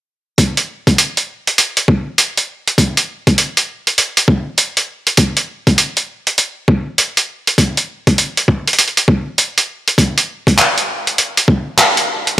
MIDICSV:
0, 0, Header, 1, 2, 480
1, 0, Start_track
1, 0, Tempo, 600000
1, 306, Time_signature, 4, 2, 24, 8
1, 9918, End_track
2, 0, Start_track
2, 0, Title_t, "Drums"
2, 304, Note_on_c, 9, 36, 104
2, 305, Note_on_c, 9, 42, 74
2, 384, Note_off_c, 9, 36, 0
2, 385, Note_off_c, 9, 42, 0
2, 458, Note_on_c, 9, 42, 49
2, 538, Note_off_c, 9, 42, 0
2, 697, Note_on_c, 9, 36, 91
2, 699, Note_on_c, 9, 42, 34
2, 777, Note_off_c, 9, 36, 0
2, 779, Note_off_c, 9, 42, 0
2, 787, Note_on_c, 9, 42, 75
2, 867, Note_off_c, 9, 42, 0
2, 938, Note_on_c, 9, 42, 48
2, 1018, Note_off_c, 9, 42, 0
2, 1179, Note_on_c, 9, 42, 34
2, 1259, Note_off_c, 9, 42, 0
2, 1265, Note_on_c, 9, 42, 72
2, 1345, Note_off_c, 9, 42, 0
2, 1415, Note_on_c, 9, 42, 49
2, 1495, Note_off_c, 9, 42, 0
2, 1505, Note_on_c, 9, 36, 92
2, 1585, Note_off_c, 9, 36, 0
2, 1745, Note_on_c, 9, 42, 75
2, 1825, Note_off_c, 9, 42, 0
2, 1900, Note_on_c, 9, 42, 47
2, 1980, Note_off_c, 9, 42, 0
2, 2140, Note_on_c, 9, 42, 34
2, 2220, Note_off_c, 9, 42, 0
2, 2224, Note_on_c, 9, 36, 105
2, 2226, Note_on_c, 9, 42, 73
2, 2304, Note_off_c, 9, 36, 0
2, 2306, Note_off_c, 9, 42, 0
2, 2378, Note_on_c, 9, 42, 50
2, 2458, Note_off_c, 9, 42, 0
2, 2616, Note_on_c, 9, 36, 96
2, 2617, Note_on_c, 9, 42, 35
2, 2696, Note_off_c, 9, 36, 0
2, 2697, Note_off_c, 9, 42, 0
2, 2704, Note_on_c, 9, 42, 71
2, 2784, Note_off_c, 9, 42, 0
2, 2857, Note_on_c, 9, 42, 49
2, 2937, Note_off_c, 9, 42, 0
2, 3096, Note_on_c, 9, 42, 33
2, 3176, Note_off_c, 9, 42, 0
2, 3184, Note_on_c, 9, 42, 71
2, 3264, Note_off_c, 9, 42, 0
2, 3336, Note_on_c, 9, 42, 50
2, 3416, Note_off_c, 9, 42, 0
2, 3423, Note_on_c, 9, 36, 97
2, 3503, Note_off_c, 9, 36, 0
2, 3662, Note_on_c, 9, 42, 76
2, 3742, Note_off_c, 9, 42, 0
2, 3816, Note_on_c, 9, 42, 50
2, 3896, Note_off_c, 9, 42, 0
2, 4054, Note_on_c, 9, 42, 34
2, 4134, Note_off_c, 9, 42, 0
2, 4138, Note_on_c, 9, 42, 74
2, 4143, Note_on_c, 9, 36, 113
2, 4218, Note_off_c, 9, 42, 0
2, 4223, Note_off_c, 9, 36, 0
2, 4294, Note_on_c, 9, 42, 50
2, 4374, Note_off_c, 9, 42, 0
2, 4536, Note_on_c, 9, 36, 98
2, 4536, Note_on_c, 9, 42, 34
2, 4616, Note_off_c, 9, 36, 0
2, 4616, Note_off_c, 9, 42, 0
2, 4623, Note_on_c, 9, 42, 72
2, 4703, Note_off_c, 9, 42, 0
2, 4774, Note_on_c, 9, 42, 47
2, 4854, Note_off_c, 9, 42, 0
2, 5015, Note_on_c, 9, 42, 33
2, 5095, Note_off_c, 9, 42, 0
2, 5103, Note_on_c, 9, 42, 70
2, 5183, Note_off_c, 9, 42, 0
2, 5344, Note_on_c, 9, 36, 97
2, 5424, Note_off_c, 9, 36, 0
2, 5585, Note_on_c, 9, 42, 73
2, 5665, Note_off_c, 9, 42, 0
2, 5737, Note_on_c, 9, 42, 47
2, 5817, Note_off_c, 9, 42, 0
2, 5979, Note_on_c, 9, 42, 34
2, 6059, Note_off_c, 9, 42, 0
2, 6064, Note_on_c, 9, 36, 110
2, 6066, Note_on_c, 9, 42, 72
2, 6144, Note_off_c, 9, 36, 0
2, 6146, Note_off_c, 9, 42, 0
2, 6219, Note_on_c, 9, 42, 49
2, 6299, Note_off_c, 9, 42, 0
2, 6457, Note_on_c, 9, 36, 97
2, 6458, Note_on_c, 9, 42, 33
2, 6537, Note_off_c, 9, 36, 0
2, 6538, Note_off_c, 9, 42, 0
2, 6545, Note_on_c, 9, 42, 70
2, 6625, Note_off_c, 9, 42, 0
2, 6699, Note_on_c, 9, 42, 46
2, 6779, Note_off_c, 9, 42, 0
2, 6784, Note_on_c, 9, 36, 57
2, 6864, Note_off_c, 9, 36, 0
2, 6940, Note_on_c, 9, 42, 29
2, 6985, Note_off_c, 9, 42, 0
2, 6985, Note_on_c, 9, 42, 25
2, 7028, Note_off_c, 9, 42, 0
2, 7028, Note_on_c, 9, 42, 67
2, 7101, Note_off_c, 9, 42, 0
2, 7101, Note_on_c, 9, 42, 17
2, 7178, Note_off_c, 9, 42, 0
2, 7178, Note_on_c, 9, 42, 48
2, 7258, Note_off_c, 9, 42, 0
2, 7263, Note_on_c, 9, 36, 97
2, 7343, Note_off_c, 9, 36, 0
2, 7505, Note_on_c, 9, 42, 73
2, 7585, Note_off_c, 9, 42, 0
2, 7661, Note_on_c, 9, 42, 49
2, 7741, Note_off_c, 9, 42, 0
2, 7901, Note_on_c, 9, 42, 32
2, 7981, Note_off_c, 9, 42, 0
2, 7984, Note_on_c, 9, 36, 108
2, 7987, Note_on_c, 9, 42, 69
2, 8064, Note_off_c, 9, 36, 0
2, 8067, Note_off_c, 9, 42, 0
2, 8141, Note_on_c, 9, 42, 48
2, 8221, Note_off_c, 9, 42, 0
2, 8376, Note_on_c, 9, 36, 90
2, 8383, Note_on_c, 9, 42, 32
2, 8456, Note_off_c, 9, 36, 0
2, 8463, Note_off_c, 9, 42, 0
2, 8467, Note_on_c, 9, 39, 108
2, 8467, Note_on_c, 9, 42, 70
2, 8547, Note_off_c, 9, 39, 0
2, 8547, Note_off_c, 9, 42, 0
2, 8621, Note_on_c, 9, 42, 46
2, 8701, Note_off_c, 9, 42, 0
2, 8858, Note_on_c, 9, 42, 32
2, 8938, Note_off_c, 9, 42, 0
2, 8946, Note_on_c, 9, 42, 66
2, 9026, Note_off_c, 9, 42, 0
2, 9099, Note_on_c, 9, 42, 48
2, 9179, Note_off_c, 9, 42, 0
2, 9183, Note_on_c, 9, 36, 97
2, 9263, Note_off_c, 9, 36, 0
2, 9426, Note_on_c, 9, 39, 110
2, 9426, Note_on_c, 9, 42, 69
2, 9506, Note_off_c, 9, 39, 0
2, 9506, Note_off_c, 9, 42, 0
2, 9578, Note_on_c, 9, 42, 46
2, 9658, Note_off_c, 9, 42, 0
2, 9817, Note_on_c, 9, 42, 31
2, 9897, Note_off_c, 9, 42, 0
2, 9918, End_track
0, 0, End_of_file